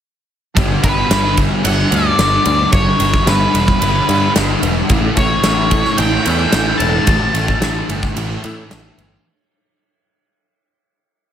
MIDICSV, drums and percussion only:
0, 0, Header, 1, 2, 480
1, 0, Start_track
1, 0, Tempo, 543971
1, 494, Time_signature, 4, 2, 24, 8
1, 9995, End_track
2, 0, Start_track
2, 0, Title_t, "Drums"
2, 500, Note_on_c, 9, 36, 107
2, 500, Note_on_c, 9, 51, 90
2, 588, Note_off_c, 9, 36, 0
2, 589, Note_off_c, 9, 51, 0
2, 738, Note_on_c, 9, 36, 86
2, 738, Note_on_c, 9, 51, 79
2, 826, Note_off_c, 9, 36, 0
2, 827, Note_off_c, 9, 51, 0
2, 978, Note_on_c, 9, 38, 108
2, 978, Note_on_c, 9, 51, 108
2, 1066, Note_off_c, 9, 38, 0
2, 1066, Note_off_c, 9, 51, 0
2, 1212, Note_on_c, 9, 51, 74
2, 1215, Note_on_c, 9, 36, 82
2, 1300, Note_off_c, 9, 51, 0
2, 1303, Note_off_c, 9, 36, 0
2, 1453, Note_on_c, 9, 51, 110
2, 1542, Note_off_c, 9, 51, 0
2, 1693, Note_on_c, 9, 51, 78
2, 1781, Note_off_c, 9, 51, 0
2, 1931, Note_on_c, 9, 38, 113
2, 1931, Note_on_c, 9, 51, 104
2, 2020, Note_off_c, 9, 38, 0
2, 2020, Note_off_c, 9, 51, 0
2, 2166, Note_on_c, 9, 51, 72
2, 2254, Note_off_c, 9, 51, 0
2, 2404, Note_on_c, 9, 51, 93
2, 2407, Note_on_c, 9, 36, 113
2, 2492, Note_off_c, 9, 51, 0
2, 2496, Note_off_c, 9, 36, 0
2, 2646, Note_on_c, 9, 51, 75
2, 2734, Note_off_c, 9, 51, 0
2, 2767, Note_on_c, 9, 36, 90
2, 2855, Note_off_c, 9, 36, 0
2, 2888, Note_on_c, 9, 38, 115
2, 2888, Note_on_c, 9, 51, 97
2, 2976, Note_off_c, 9, 38, 0
2, 2976, Note_off_c, 9, 51, 0
2, 3130, Note_on_c, 9, 51, 67
2, 3218, Note_off_c, 9, 51, 0
2, 3247, Note_on_c, 9, 36, 85
2, 3335, Note_off_c, 9, 36, 0
2, 3368, Note_on_c, 9, 51, 98
2, 3456, Note_off_c, 9, 51, 0
2, 3608, Note_on_c, 9, 51, 66
2, 3696, Note_off_c, 9, 51, 0
2, 3845, Note_on_c, 9, 38, 116
2, 3845, Note_on_c, 9, 51, 92
2, 3933, Note_off_c, 9, 38, 0
2, 3933, Note_off_c, 9, 51, 0
2, 4084, Note_on_c, 9, 51, 69
2, 4173, Note_off_c, 9, 51, 0
2, 4319, Note_on_c, 9, 51, 89
2, 4323, Note_on_c, 9, 36, 105
2, 4407, Note_off_c, 9, 51, 0
2, 4411, Note_off_c, 9, 36, 0
2, 4560, Note_on_c, 9, 51, 70
2, 4562, Note_on_c, 9, 36, 83
2, 4648, Note_off_c, 9, 51, 0
2, 4650, Note_off_c, 9, 36, 0
2, 4796, Note_on_c, 9, 38, 105
2, 4796, Note_on_c, 9, 51, 102
2, 4885, Note_off_c, 9, 38, 0
2, 4885, Note_off_c, 9, 51, 0
2, 5039, Note_on_c, 9, 51, 71
2, 5042, Note_on_c, 9, 36, 80
2, 5127, Note_off_c, 9, 51, 0
2, 5130, Note_off_c, 9, 36, 0
2, 5159, Note_on_c, 9, 38, 33
2, 5247, Note_off_c, 9, 38, 0
2, 5276, Note_on_c, 9, 51, 108
2, 5365, Note_off_c, 9, 51, 0
2, 5520, Note_on_c, 9, 51, 77
2, 5608, Note_off_c, 9, 51, 0
2, 5757, Note_on_c, 9, 38, 108
2, 5757, Note_on_c, 9, 51, 106
2, 5845, Note_off_c, 9, 38, 0
2, 5845, Note_off_c, 9, 51, 0
2, 6002, Note_on_c, 9, 51, 73
2, 6090, Note_off_c, 9, 51, 0
2, 6238, Note_on_c, 9, 51, 96
2, 6242, Note_on_c, 9, 36, 110
2, 6326, Note_off_c, 9, 51, 0
2, 6330, Note_off_c, 9, 36, 0
2, 6482, Note_on_c, 9, 51, 71
2, 6570, Note_off_c, 9, 51, 0
2, 6603, Note_on_c, 9, 36, 86
2, 6692, Note_off_c, 9, 36, 0
2, 6722, Note_on_c, 9, 38, 114
2, 6722, Note_on_c, 9, 51, 100
2, 6810, Note_off_c, 9, 38, 0
2, 6810, Note_off_c, 9, 51, 0
2, 6966, Note_on_c, 9, 51, 70
2, 7055, Note_off_c, 9, 51, 0
2, 7085, Note_on_c, 9, 36, 86
2, 7085, Note_on_c, 9, 38, 35
2, 7173, Note_off_c, 9, 36, 0
2, 7173, Note_off_c, 9, 38, 0
2, 7205, Note_on_c, 9, 51, 106
2, 7293, Note_off_c, 9, 51, 0
2, 7445, Note_on_c, 9, 51, 67
2, 7533, Note_off_c, 9, 51, 0
2, 7686, Note_on_c, 9, 38, 116
2, 7686, Note_on_c, 9, 51, 99
2, 7774, Note_off_c, 9, 38, 0
2, 7774, Note_off_c, 9, 51, 0
2, 7928, Note_on_c, 9, 51, 63
2, 8016, Note_off_c, 9, 51, 0
2, 9995, End_track
0, 0, End_of_file